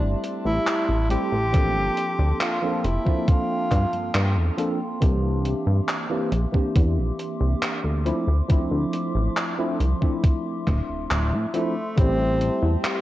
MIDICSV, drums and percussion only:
0, 0, Header, 1, 2, 480
1, 0, Start_track
1, 0, Tempo, 869565
1, 851, Time_signature, 4, 2, 24, 8
1, 7182, End_track
2, 0, Start_track
2, 0, Title_t, "Drums"
2, 131, Note_on_c, 9, 42, 68
2, 186, Note_off_c, 9, 42, 0
2, 371, Note_on_c, 9, 39, 125
2, 371, Note_on_c, 9, 42, 81
2, 426, Note_off_c, 9, 39, 0
2, 426, Note_off_c, 9, 42, 0
2, 610, Note_on_c, 9, 42, 65
2, 665, Note_off_c, 9, 42, 0
2, 849, Note_on_c, 9, 42, 81
2, 850, Note_on_c, 9, 36, 121
2, 905, Note_off_c, 9, 42, 0
2, 906, Note_off_c, 9, 36, 0
2, 1089, Note_on_c, 9, 42, 65
2, 1144, Note_off_c, 9, 42, 0
2, 1330, Note_on_c, 9, 39, 118
2, 1330, Note_on_c, 9, 42, 74
2, 1385, Note_off_c, 9, 39, 0
2, 1385, Note_off_c, 9, 42, 0
2, 1569, Note_on_c, 9, 42, 62
2, 1625, Note_off_c, 9, 42, 0
2, 1691, Note_on_c, 9, 36, 63
2, 1746, Note_off_c, 9, 36, 0
2, 1809, Note_on_c, 9, 42, 79
2, 1810, Note_on_c, 9, 36, 123
2, 1864, Note_off_c, 9, 42, 0
2, 1865, Note_off_c, 9, 36, 0
2, 2050, Note_on_c, 9, 36, 63
2, 2050, Note_on_c, 9, 39, 37
2, 2050, Note_on_c, 9, 42, 64
2, 2105, Note_off_c, 9, 36, 0
2, 2105, Note_off_c, 9, 39, 0
2, 2105, Note_off_c, 9, 42, 0
2, 2169, Note_on_c, 9, 42, 36
2, 2225, Note_off_c, 9, 42, 0
2, 2289, Note_on_c, 9, 39, 120
2, 2289, Note_on_c, 9, 42, 78
2, 2344, Note_off_c, 9, 39, 0
2, 2344, Note_off_c, 9, 42, 0
2, 2530, Note_on_c, 9, 42, 65
2, 2585, Note_off_c, 9, 42, 0
2, 2769, Note_on_c, 9, 42, 80
2, 2770, Note_on_c, 9, 36, 107
2, 2824, Note_off_c, 9, 42, 0
2, 2825, Note_off_c, 9, 36, 0
2, 3010, Note_on_c, 9, 42, 64
2, 3065, Note_off_c, 9, 42, 0
2, 3250, Note_on_c, 9, 39, 110
2, 3250, Note_on_c, 9, 42, 73
2, 3305, Note_off_c, 9, 39, 0
2, 3305, Note_off_c, 9, 42, 0
2, 3490, Note_on_c, 9, 42, 62
2, 3545, Note_off_c, 9, 42, 0
2, 3611, Note_on_c, 9, 36, 59
2, 3666, Note_off_c, 9, 36, 0
2, 3730, Note_on_c, 9, 36, 120
2, 3730, Note_on_c, 9, 42, 77
2, 3785, Note_off_c, 9, 36, 0
2, 3785, Note_off_c, 9, 42, 0
2, 3970, Note_on_c, 9, 42, 58
2, 4025, Note_off_c, 9, 42, 0
2, 4209, Note_on_c, 9, 39, 114
2, 4209, Note_on_c, 9, 42, 74
2, 4264, Note_off_c, 9, 39, 0
2, 4264, Note_off_c, 9, 42, 0
2, 4450, Note_on_c, 9, 42, 62
2, 4505, Note_off_c, 9, 42, 0
2, 4690, Note_on_c, 9, 42, 75
2, 4691, Note_on_c, 9, 36, 108
2, 4745, Note_off_c, 9, 42, 0
2, 4746, Note_off_c, 9, 36, 0
2, 4930, Note_on_c, 9, 42, 64
2, 4985, Note_off_c, 9, 42, 0
2, 5171, Note_on_c, 9, 39, 110
2, 5171, Note_on_c, 9, 42, 77
2, 5226, Note_off_c, 9, 39, 0
2, 5226, Note_off_c, 9, 42, 0
2, 5411, Note_on_c, 9, 42, 61
2, 5467, Note_off_c, 9, 42, 0
2, 5531, Note_on_c, 9, 36, 56
2, 5587, Note_off_c, 9, 36, 0
2, 5651, Note_on_c, 9, 36, 118
2, 5651, Note_on_c, 9, 42, 78
2, 5706, Note_off_c, 9, 36, 0
2, 5707, Note_off_c, 9, 42, 0
2, 5891, Note_on_c, 9, 36, 60
2, 5892, Note_on_c, 9, 39, 34
2, 5892, Note_on_c, 9, 42, 62
2, 5946, Note_off_c, 9, 36, 0
2, 5947, Note_off_c, 9, 39, 0
2, 5947, Note_off_c, 9, 42, 0
2, 6132, Note_on_c, 9, 39, 116
2, 6132, Note_on_c, 9, 42, 77
2, 6187, Note_off_c, 9, 39, 0
2, 6187, Note_off_c, 9, 42, 0
2, 6371, Note_on_c, 9, 42, 60
2, 6426, Note_off_c, 9, 42, 0
2, 6611, Note_on_c, 9, 36, 110
2, 6611, Note_on_c, 9, 42, 77
2, 6666, Note_off_c, 9, 42, 0
2, 6667, Note_off_c, 9, 36, 0
2, 6851, Note_on_c, 9, 42, 64
2, 6906, Note_off_c, 9, 42, 0
2, 7091, Note_on_c, 9, 39, 109
2, 7091, Note_on_c, 9, 42, 78
2, 7146, Note_off_c, 9, 39, 0
2, 7146, Note_off_c, 9, 42, 0
2, 7182, End_track
0, 0, End_of_file